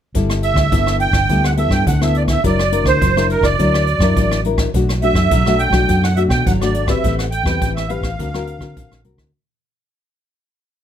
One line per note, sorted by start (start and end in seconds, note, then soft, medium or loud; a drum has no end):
0.14 0.51 G1 medium
0.14 0.70 G3 soft
0.14 0.68 B3 soft
0.14 0.68 E4 medium
0.14 0.68 A4 medium
0.14 kick medium
0.14 closed hi-hat medium
0.30 cross-stick medium
0.30 closed hi-hat soft
0.43 0.97 E5 loud
0.43 closed hi-hat soft
0.54 0.68 D2 medium
0.54 kick medium
0.54 cross-stick medium
0.72 1.09 G1 medium
0.72 1.27 D3 medium
0.72 1.09 B3 medium
0.72 1.09 E4 medium
0.72 1.10 A4 medium
0.72 kick medium
0.72 closed hi-hat medium
0.87 cross-stick medium
1.00 1.45 G5 loud
1.00 closed hi-hat medium
1.11 1.25 G1 medium
1.11 kick medium
1.11 cross-stick medium
1.29 1.66 D2 medium
1.29 1.84 G3 medium
1.29 1.54 B3 medium
1.29 1.54 E4 soft
1.29 1.54 A4 medium
1.29 kick soft
1.29 closed hi-hat medium
1.44 1.51 F#5 medium
1.44 cross-stick medium
1.57 1.96 B3 soft
1.57 1.96 E4 soft
1.57 1.97 A4 medium
1.57 1.73 E5 medium
1.57 closed hi-hat soft
1.69 1.83 G2 medium
1.69 1.86 G5 loud
1.69 kick medium
1.69 cross-stick medium
1.87 2.36 D2 medium
1.87 2.42 D3 soft
1.87 2.01 F#5 medium
1.87 kick medium
1.87 closed hi-hat medium
2.01 2.40 B3 medium
2.01 2.40 E4 medium
2.01 2.40 A4 medium
2.01 2.17 E5 medium
2.01 cross-stick medium
2.01 closed hi-hat soft
2.14 2.23 D5 medium
2.14 closed hi-hat soft
2.28 2.43 E5 medium
2.28 kick medium
2.28 cross-stick medium
2.28 closed hi-hat soft
2.44 2.81 F#1 medium
2.44 2.99 F#3 medium
2.44 2.61 D4 medium
2.44 2.61 E4 medium
2.44 2.61 A#4 medium
2.44 2.85 D5 medium
2.44 kick medium
2.44 closed hi-hat medium
2.59 cross-stick medium
2.59 closed hi-hat soft
2.72 3.11 D4 medium
2.72 3.11 E4 medium
2.72 3.11 A#4 medium
2.72 closed hi-hat medium
2.84 2.97 D2 medium
2.84 3.27 C5 medium
2.84 kick medium
2.84 cross-stick medium
3.01 3.38 F#1 medium
3.01 3.56 F#3 soft
3.01 kick medium
3.01 closed hi-hat medium
3.17 3.55 D4 medium
3.17 3.55 E4 medium
3.17 3.55 A#4 medium
3.17 cross-stick medium
3.30 3.45 A#4 medium
3.30 closed hi-hat soft
3.41 3.55 F#1 medium
3.41 4.41 D5 medium
3.41 kick medium
3.41 cross-stick medium
3.41 closed hi-hat soft
3.59 3.96 D2 medium
3.59 4.14 F#3 soft
3.59 3.86 D4 soft
3.59 3.86 E4 soft
3.59 3.86 A#4 medium
3.59 kick medium
3.59 closed hi-hat medium
3.74 cross-stick medium
3.87 closed hi-hat soft
3.98 4.12 F#2 medium
3.98 4.40 D4 medium
3.98 4.40 E4 medium
3.98 4.40 A#4 medium
3.98 kick medium
3.98 cross-stick medium
4.16 4.65 A1 medium
4.16 4.71 F#3 soft
4.16 kick medium
4.16 closed hi-hat medium
4.31 cross-stick medium
4.44 4.69 D4 soft
4.44 4.70 E4 medium
4.44 4.70 A#4 medium
4.44 closed hi-hat soft
4.58 kick medium
4.58 cross-stick medium
4.58 closed hi-hat soft
4.74 5.11 B1 medium
4.74 5.29 B2 medium
4.74 4.91 A3 medium
4.74 4.91 D4 medium
4.74 4.92 F#4 medium
4.74 kick medium
4.74 closed hi-hat medium
4.89 cross-stick medium
4.89 closed hi-hat soft
5.02 5.41 A3 medium
5.02 5.41 D4 medium
5.02 5.42 F#4 medium
5.02 5.62 E5 loud
5.02 closed hi-hat soft
5.13 5.27 F#2 medium
5.13 kick medium
5.13 cross-stick medium
5.31 5.68 B1 medium
5.31 5.86 F#3 medium
5.31 kick medium
5.31 closed hi-hat medium
5.46 5.70 A3 medium
5.46 5.71 D4 medium
5.46 5.71 F#4 medium
5.46 cross-stick medium
5.59 6.04 G5 loud
5.59 closed hi-hat soft
5.71 5.85 B1 medium
5.71 6.12 A3 medium
5.71 6.12 D4 medium
5.71 6.12 F#4 medium
5.71 kick medium
5.71 cross-stick medium
5.89 6.25 F#2 medium
5.89 6.44 B2 medium
5.89 kick medium
5.89 closed hi-hat medium
6.04 6.18 F#5 medium
6.04 cross-stick medium
6.16 6.56 A3 soft
6.16 6.56 D4 soft
6.16 6.56 F#4 medium
6.16 6.23 E5 medium
6.16 closed hi-hat soft
6.28 6.42 B2 medium
6.28 6.46 G5 loud
6.28 kick medium
6.28 cross-stick medium
6.46 6.95 G#1 medium
6.46 7.01 F#3 soft
6.46 6.52 F#5 medium
6.46 kick medium
6.46 closed hi-hat medium
6.61 6.85 A3 medium
6.61 6.86 D4 medium
6.61 6.86 F#4 medium
6.61 6.91 D5 medium
6.61 cross-stick medium
6.61 closed hi-hat soft
6.74 closed hi-hat soft
6.88 7.28 C4 soft
6.88 7.28 G4 medium
6.88 7.28 B4 medium
6.88 7.15 E5 medium
6.88 kick medium
6.88 cross-stick medium
6.88 closed hi-hat soft
7.04 7.41 A1 medium
7.04 7.59 A3 medium
7.04 kick medium
7.04 closed hi-hat medium
7.18 7.25 F#5 medium
7.18 cross-stick medium
7.18 closed hi-hat soft
7.31 7.72 G5 loud
7.31 closed hi-hat medium
7.44 7.57 E2 medium
7.44 7.85 C4 medium
7.44 7.85 G4 medium
7.44 7.86 B4 medium
7.44 kick medium
7.44 cross-stick medium
7.61 7.98 A1 medium
7.61 8.16 E3 medium
7.61 kick medium
7.61 closed hi-hat medium
7.75 7.91 E5 medium
7.75 cross-stick medium
7.89 8.09 C4 medium
7.89 8.09 G4 medium
7.89 8.09 B4 medium
7.89 9.01 F5 medium
7.89 closed hi-hat soft
8.01 8.15 A1 medium
8.01 kick medium
8.01 cross-stick medium
8.01 closed hi-hat soft
8.19 8.56 D2 medium
8.19 8.74 D3 soft
8.19 8.29 C4 medium
8.19 8.29 F#4 medium
8.19 8.29 A#4 medium
8.19 kick medium
8.19 closed hi-hat medium
8.34 8.58 C4 medium
8.34 8.58 F#4 medium
8.34 8.59 A#4 medium
8.34 cross-stick medium
8.47 closed hi-hat soft
8.59 8.73 D3 medium
8.59 9.00 C4 medium
8.59 9.01 F#4 medium
8.59 9.01 A#4 medium
8.59 kick medium
8.59 cross-stick medium
8.77 8.89 A#1 medium
8.77 9.32 D3 medium
8.77 kick medium
8.77 closed hi-hat medium
8.91 9.04 A#1 medium
8.91 cross-stick medium
9.04 9.16 C2 medium
9.04 9.29 C4 soft
9.04 9.30 F#4 medium
9.04 9.30 A#4 medium
9.04 closed hi-hat soft
9.16 9.31 D2 medium
9.16 kick medium
9.16 cross-stick medium
9.16 closed hi-hat soft